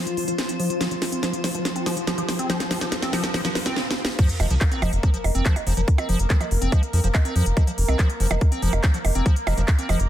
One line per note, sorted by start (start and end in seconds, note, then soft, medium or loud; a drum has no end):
0.00 3.76 F3 medium
0.00 3.76 F4 medium
0.00 3.76 C5 medium
0.00 3.76 C6 medium
0.00 riser medium
0.07 closed hi-hat medium
0.17 0.24 F3 medium
0.17 open hi-hat loud
0.28 0.32 F3 medium
0.28 closed hi-hat medium
0.38 snare medium
0.38 closed hi-hat medium
0.49 0.59 C4 medium
0.49 closed hi-hat medium
0.60 0.70 F3 loud
0.60 open hi-hat loud
0.70 closed hi-hat medium
0.81 0.88 F3 medium
0.81 snare medium
0.81 closed hi-hat medium
0.91 0.95 F3 medium
0.91 closed hi-hat medium
1.02 snare medium
1.02 open hi-hat loud
1.12 1.22 C4 medium
1.12 closed hi-hat medium
1.23 1.33 F3 loud
1.23 snare medium
1.23 closed hi-hat medium
1.33 closed hi-hat medium
1.44 1.51 F3 medium
1.44 snare medium
1.44 open hi-hat loud
1.55 1.59 F3 medium
1.55 closed hi-hat medium
1.65 snare medium
1.65 closed hi-hat medium
1.76 1.86 C4 medium
1.76 closed hi-hat medium
1.86 1.96 F3 loud
1.86 snare medium
1.86 open hi-hat loud
1.97 closed hi-hat medium
2.07 2.14 F3 medium
2.07 snare medium
2.07 closed hi-hat medium
2.18 2.22 F3 medium
2.18 closed hi-hat medium
2.29 snare medium
2.29 open hi-hat loud
2.39 2.49 C4 medium
2.39 closed hi-hat medium
2.50 2.60 F3 loud
2.50 snare medium
2.50 closed hi-hat medium
2.60 snare medium
2.60 closed hi-hat medium
2.71 2.78 F3 medium
2.71 snare medium
2.71 open hi-hat loud
2.81 2.86 F3 medium
2.81 snare medium
2.81 closed hi-hat medium
2.92 snare medium
2.92 closed hi-hat medium
3.03 3.13 C4 medium
3.03 snare medium
3.03 closed hi-hat medium
3.13 3.23 F3 loud
3.13 snare loud
3.13 open hi-hat loud
3.24 snare medium
3.24 closed hi-hat medium
3.34 3.41 F3 medium
3.34 snare loud
3.34 open hi-hat medium
3.45 3.49 F3 medium
3.45 snare medium
3.45 closed hi-hat medium
3.55 snare loud
3.55 open hi-hat loud
3.66 3.76 C4 medium
3.66 snare loud
3.66 closed hi-hat medium
3.76 snare medium
3.91 snare medium
4.05 snare loud
4.19 4.29 F3 loud
4.19 10.09 A#3 medium
4.19 10.09 A#4 medium
4.19 kick loud
4.19 closed hi-hat medium
4.19 crash loud
4.19 sub drop medium
4.29 closed hi-hat medium
4.40 4.47 F1 medium
4.40 4.47 F3 medium
4.40 open hi-hat loud
4.40 percussion blips soft
4.50 4.57 C2 medium
4.50 4.55 F3 medium
4.50 closed hi-hat medium
4.61 kick loud
4.61 clap loud
4.61 closed hi-hat medium
4.72 4.82 C4 medium
4.72 closed hi-hat medium
4.82 4.89 F1 medium
4.82 4.92 F3 loud
4.82 open hi-hat loud
4.82 percussion blips medium
4.93 5.00 F1 medium
4.93 closed hi-hat medium
5.03 5.10 F3 medium
5.03 kick loud
5.03 closed hi-hat medium
5.14 5.18 F3 medium
5.14 closed hi-hat medium
5.24 5.31 F1 loud
5.24 open hi-hat loud
5.24 percussion blips soft
5.35 5.42 F1 medium
5.35 5.45 C4 medium
5.35 closed hi-hat medium
5.46 5.56 F3 loud
5.46 kick loud
5.46 clap loud
5.46 closed hi-hat medium
5.56 closed hi-hat medium
5.56 percussion blips soft
5.67 5.73 F1 loud
5.67 5.74 F3 medium
5.67 open hi-hat loud
5.77 5.84 F1 medium
5.77 5.81 F3 medium
5.77 closed hi-hat medium
5.88 kick loud
5.88 closed hi-hat medium
5.98 6.08 C4 medium
5.98 closed hi-hat medium
5.98 percussion blips medium
6.09 6.16 F1 medium
6.09 6.19 F3 loud
6.09 open hi-hat loud
6.19 6.26 F1 medium
6.19 closed hi-hat medium
6.30 6.37 F3 medium
6.30 kick loud
6.30 clap loud
6.30 closed hi-hat medium
6.41 6.45 F3 medium
6.41 closed hi-hat medium
6.41 percussion blips soft
6.51 6.58 F1 loud
6.51 open hi-hat loud
6.62 6.69 F1 medium
6.62 6.72 C4 medium
6.62 closed hi-hat medium
6.72 6.82 F3 loud
6.72 kick loud
6.72 closed hi-hat medium
6.72 percussion blips soft
6.83 closed hi-hat medium
6.93 7.00 F2 medium
6.93 7.00 F3 medium
6.93 open hi-hat loud
7.04 7.11 F1 medium
7.04 7.08 F3 medium
7.04 closed hi-hat medium
7.15 kick loud
7.15 clap loud
7.15 closed hi-hat medium
7.15 percussion blips medium
7.25 7.35 C4 medium
7.25 closed hi-hat medium
7.36 7.42 F2 loud
7.36 7.46 F3 loud
7.36 open hi-hat loud
7.46 7.53 F1 medium
7.46 closed hi-hat medium
7.57 7.64 F3 medium
7.57 kick loud
7.57 closed hi-hat medium
7.57 percussion blips soft
7.67 7.72 F3 medium
7.67 closed hi-hat medium
7.78 7.85 F1 medium
7.78 open hi-hat loud
7.88 7.95 C2 medium
7.88 7.98 C4 medium
7.88 closed hi-hat medium
7.88 percussion blips soft
7.99 8.09 F3 loud
7.99 kick loud
7.99 clap loud
7.99 closed hi-hat medium
8.10 closed hi-hat medium
8.20 8.27 F1 loud
8.20 8.27 F3 medium
8.20 open hi-hat loud
8.31 8.38 F1 medium
8.31 8.35 F3 medium
8.31 closed hi-hat medium
8.31 percussion blips medium
8.41 kick loud
8.41 closed hi-hat medium
8.52 8.62 C4 medium
8.52 closed hi-hat medium
8.62 8.69 F1 loud
8.62 8.72 F3 loud
8.62 open hi-hat loud
8.73 8.80 F1 medium
8.73 closed hi-hat medium
8.73 percussion blips soft
8.84 8.91 F3 medium
8.84 kick loud
8.84 clap loud
8.84 closed hi-hat medium
8.94 8.98 F3 medium
8.94 closed hi-hat medium
9.05 9.12 F1 loud
9.05 open hi-hat loud
9.05 percussion blips soft
9.15 9.22 F1 medium
9.15 9.25 C4 medium
9.15 closed hi-hat medium
9.26 9.36 F3 loud
9.26 kick loud
9.26 closed hi-hat medium
9.36 closed hi-hat medium
9.47 9.54 F1 medium
9.47 9.54 F3 medium
9.47 open hi-hat loud
9.47 percussion blips medium
9.57 9.64 F1 medium
9.57 9.62 F3 medium
9.57 closed hi-hat medium
9.68 kick loud
9.68 clap loud
9.68 closed hi-hat medium
9.79 9.89 C4 medium
9.79 closed hi-hat medium
9.89 9.96 F1 medium
9.89 9.99 F3 loud
9.89 open hi-hat loud
9.89 percussion blips soft
10.00 10.07 F1 medium
10.00 closed hi-hat medium